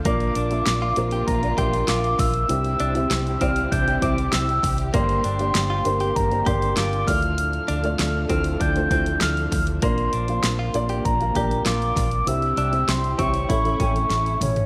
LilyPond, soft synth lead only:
\new Staff \with { instrumentName = "Soft synth lead" } { \time 4/4 \key bes \lydian \tempo 4 = 98 d'''2 bes''8 c'''8 d'''8 e'''8~ | e'''4. f'''8 g'''8 d'''8 e'''8. r16 | c'''2 bes''8 c'''8 d'''8 f'''8~ | f'''4. f'''8 g'''8 g'''8 f'''8. r16 |
c'''2 bes''4 d'''4 | e'''8 e'''8 c'''8 cis'''2 cis''8 | }